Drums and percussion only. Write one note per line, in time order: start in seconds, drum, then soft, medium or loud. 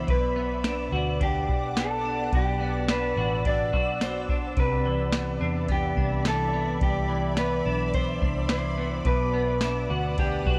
0.08 kick loud
0.08 ride medium
0.64 snare loud
0.64 ride medium
0.64 tambourine medium
1.21 kick medium
1.21 ride medium
1.49 kick loud
1.76 snare loud
1.76 ride medium
1.76 tambourine medium
2.33 kick loud
2.33 ride medium
2.89 snare loud
2.89 ride medium
2.89 tambourine medium
3.45 kick medium
3.45 ride medium
3.73 kick loud
4.01 snare loud
4.01 ride medium
4.01 tambourine medium
4.29 kick loud
4.57 kick loud
4.57 ride medium
5.12 snare loud
5.12 ride medium
5.12 tambourine medium
5.69 kick medium
5.69 ride medium
5.97 kick loud
6.25 snare loud
6.25 ride medium
6.25 tambourine medium
6.81 kick loud
6.81 ride medium
7.37 snare loud
7.37 ride medium
7.37 tambourine medium
7.93 kick loud
7.93 ride medium
8.22 kick loud
8.49 snare loud
8.49 ride medium
8.49 tambourine medium
9.05 kick loud
9.05 ride medium
9.61 snare loud
9.61 ride medium
9.61 tambourine medium
10.18 kick medium
10.18 ride medium
10.46 kick loud